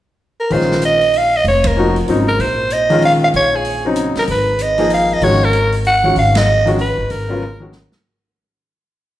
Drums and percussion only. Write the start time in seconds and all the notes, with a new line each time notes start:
0.50 open hi-hat
0.61 snare
0.71 snare
0.82 closed hi-hat
1.01 open hi-hat
1.13 open hi-hat
1.45 open hi-hat
1.64 kick, ride
1.96 open hi-hat
2.08 open hi-hat
2.40 open hi-hat
2.70 closed hi-hat
2.90 open hi-hat
3.02 open hi-hat
3.34 open hi-hat
3.65 open hi-hat
3.96 closed hi-hat
4.15 snare, open hi-hat
4.27 open hi-hat
4.59 closed hi-hat
4.78 open hi-hat
4.90 open hi-hat
5.21 open hi-hat
5.53 closed hi-hat
5.72 open hi-hat
5.85 open hi-hat
6.16 open hi-hat
6.35 snare, ride
6.67 open hi-hat
6.79 open hi-hat
7.10 open hi-hat
7.42 high tom
7.73 snare
7.92 snare